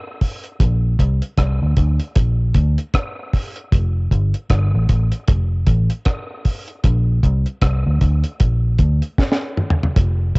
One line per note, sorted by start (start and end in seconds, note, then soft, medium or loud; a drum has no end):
0.21 kick medium
0.21 open hi-hat medium
0.44 closed hi-hat soft
0.60 0.96 A#1 medium
0.60 kick loud
0.60 closed hi-hat loud
0.99 1.20 C2 medium
0.99 kick medium
0.99 closed hi-hat medium
1.22 closed hi-hat soft
1.38 1.59 C2 medium
1.38 kick loud
1.38 cross-stick loud
1.38 closed hi-hat medium
1.62 1.77 D2 medium
1.77 1.98 D2 medium
1.77 kick medium
1.77 closed hi-hat medium
2.00 closed hi-hat soft
2.16 2.52 A#1 medium
2.16 kick loud
2.16 closed hi-hat medium
2.55 2.76 D2 loud
2.55 kick medium
2.55 closed hi-hat medium
2.78 closed hi-hat medium
2.94 kick loud
2.94 cross-stick loud
2.94 closed hi-hat medium
3.33 kick medium
3.33 open hi-hat medium
3.56 closed hi-hat medium
3.72 4.08 F1 medium
3.72 kick loud
3.72 closed hi-hat medium
4.11 4.32 G1 loud
4.11 kick medium
4.11 closed hi-hat medium
4.34 closed hi-hat soft
4.50 4.71 G1 medium
4.50 kick loud
4.50 cross-stick medium
4.50 closed hi-hat medium
4.74 4.88 A1 medium
4.89 5.10 A1 medium
4.89 kick medium
4.89 closed hi-hat medium
5.12 closed hi-hat medium
5.27 5.64 F1 medium
5.27 kick loud
5.27 closed hi-hat medium
5.66 5.88 A1 medium
5.66 kick medium
5.66 closed hi-hat medium
5.90 closed hi-hat medium
6.05 kick loud
6.05 cross-stick loud
6.05 closed hi-hat medium
6.45 kick medium
6.45 open hi-hat medium
6.68 closed hi-hat soft
6.84 7.20 A#1 loud
6.84 kick loud
6.84 closed hi-hat loud
7.23 7.44 C2 medium
7.23 kick medium
7.23 closed hi-hat medium
7.46 closed hi-hat soft
7.62 7.83 C2 medium
7.62 kick loud
7.62 cross-stick loud
7.62 closed hi-hat medium
7.86 8.01 D2 medium
8.01 8.22 D2 medium
8.01 kick medium
8.01 closed hi-hat medium
8.24 closed hi-hat medium
8.40 8.76 A#1 medium
8.40 kick loud
8.40 closed hi-hat medium
8.79 9.00 D2 loud
8.79 kick loud
8.79 closed hi-hat medium
9.02 closed hi-hat medium
9.18 kick loud
9.18 snare medium
9.32 snare medium
9.57 mid tom medium
9.70 floor tom medium
9.83 floor tom medium
9.96 10.32 F1 medium
9.96 kick loud
9.96 closed hi-hat medium
10.35 kick medium
10.35 closed hi-hat medium